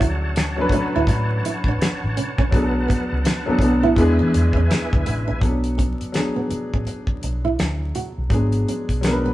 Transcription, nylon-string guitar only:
0.00 E4
0.37 muted nylon-string guitar stroke
0.74 D4
0.96 E4
1.10 muted nylon-string guitar stroke
1.46 E4
1.68 D4
1.82 muted nylon-string guitar stroke
2.17 C#4
2.39 C#4
2.88 B3
3.25 D4
3.62 muted nylon-string guitar stroke
3.83 E4
4.19 D4
4.34 muted nylon-string guitar stroke
4.57 C#4
4.70 muted nylon-string guitar stroke
5.07 B3
5.28 D4
5.78 C#4
6.36 B3
6.50 muted nylon-string guitar stroke
6.74 C#4
6.87 muted nylon-string guitar stroke
7.24 D4
7.45 E4
7.95 F#4
8.68 C#4
9.26 B3

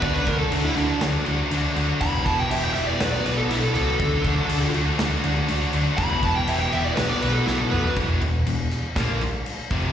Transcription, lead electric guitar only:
0.02 D5
0.14 B4
0.27 A#4
0.38 A4
0.52 D4
0.64 E4
0.76 D4
2.01 B5
2.26 A5
2.39 G5
2.51 E5
2.63 G5
2.74 E5
2.87 D5
3.00 B4
3.12 D5
3.25 B4
3.37 A4
3.49 E4
3.61 A4
3.74 A4
5.98 B5
6.24 A5
6.36 G5
6.48 E5
6.60 G5
6.72 E5
6.85 D5
6.96 B4
7.09 D5
7.21 B4
7.33 A4
7.46 E4
7.58 A4
7.71 B4

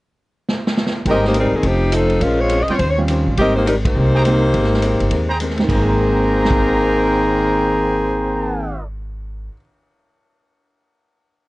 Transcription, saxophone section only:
1.10 C4 G4 A#4 D#5
1.26 A#3 D#4 G4 C5
1.39 G3 C4 D#4 A#4
1.55 D#3 A#3 C4 G#4
1.66 F3 C4 D#4 G4
1.93 F3 C4 D#4 A4
2.22 G#3 C#4 F4 A#4
2.40 G#3 C4 F4 C#5
2.62 D#5
2.73 C#5
2.79 C5
2.90 C#5
3.39 C4 G4 A#4 D#5
3.56 A#3 D#4 G4 C5
3.66 G3 C4 D#4 A#4
3.85 A#3 D#4 G4 C5
5.70 D#3 A#3 C4 G#4

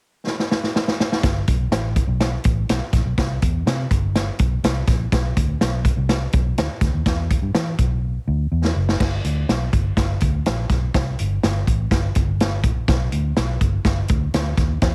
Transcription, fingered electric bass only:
1.24 G1
1.48 B1
1.71 A1
2.08 B1
2.45 A1
2.69 B1
2.93 A#1
3.05 B1
3.18 C2
3.42 E2
3.66 C3
3.91 G1
4.40 B1
4.64 C2
4.88 A#1
5.12 B1
5.37 D2
5.61 B1
5.97 C2
6.34 B1
6.58 D2
6.81 D2
6.94 D#2
7.06 E2
7.42 G2
7.55 E3
7.79 B1
8.28 D2
8.52 E2
8.76 F#1
9.00 G1
9.24 D2
9.49 B1
9.73 G1
9.97 G1
10.22 D2
10.46 A#1
10.70 B1
10.95 C2
11.19 G1
11.43 G1
11.67 A1
11.91 G1
12.16 G1
12.64 A#1
12.88 B1
13.13 D2
13.37 B1
13.61 G1
13.85 G1
14.10 D2
14.34 D2
14.57 D#2
14.82 E2

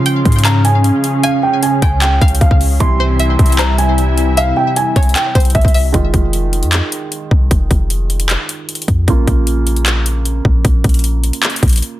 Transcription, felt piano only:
Already playing: C#3 F3 G#3 F4
2.80 C3 E3 G3 E4
5.92 D#3 G#3 F4
9.08 C#3 A#3 F4

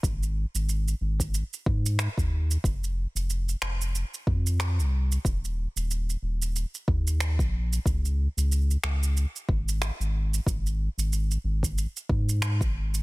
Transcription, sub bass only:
0.03 G#1
0.55 G#1
1.01 G#1
1.66 G#2
2.18 D#2
2.64 F1
3.15 F1
3.62 F1
4.27 F2
4.78 C2
5.25 D#1
5.76 D#1
6.22 D#1
6.88 D#2
7.39 A#1
7.86 C#2
8.37 C#2
8.84 C#2
9.49 G#1
10.00 G#1
10.46 G#1
10.98 G#1
11.44 G#1
12.09 G#2
12.61 G#1

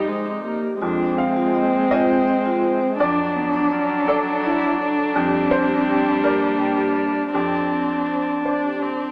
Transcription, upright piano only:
Already playing: F2 G4 C5 D5
0.82 F2
1.18 F5
1.91 G#4 C5 D#5
3.00 F2 D5
4.08 A4 D5
5.16 F2
5.51 C5
6.24 A#4 D5
7.34 F2 G4
8.45 C5 D5

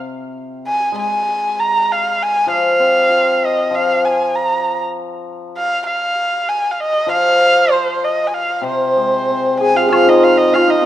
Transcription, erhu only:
0.67 G#5
0.99 G#5
1.60 A#5
1.92 F5
2.23 G#5
2.51 F5
3.45 D#5
3.75 F5
4.05 G#5
4.35 A#5
5.57 F5
5.87 F5
6.49 G#5
6.71 F5
6.80 D#5
7.12 F5
7.72 C5
8.04 D#5
8.27 G#5
8.34 F5
8.67 C5
9.60 G#5
9.76 F5
9.92 F5
10.09 D#5
10.24 F5
10.37 D#5
10.54 F5
10.70 D#5

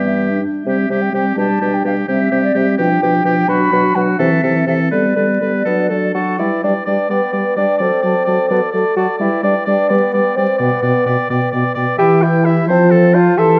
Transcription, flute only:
Already playing: E5
0.64 E5
1.02 G5
1.14 G5
1.37 A5
1.74 G5
1.87 F5
2.10 E5
2.44 D5
2.57 E5
2.79 G5
3.48 B5
3.95 F#5
4.19 E5
4.68 E5
4.91 D5
6.39 G5
6.63 G5
6.87 G5
7.10 G5
7.34 G5
7.57 G5
7.79 A5
8.04 A5
8.27 A5
8.50 A5
8.74 A5
8.96 A5
9.20 G5
9.44 G5
9.69 G5
9.91 G5
10.15 G5
10.37 G5
10.59 G5
10.83 G5
11.06 G5
11.30 G5
11.54 G5
11.75 G5
11.98 B5
12.21 G5
12.44 B5
12.68 A5
12.91 F5
13.14 A5
13.37 C6

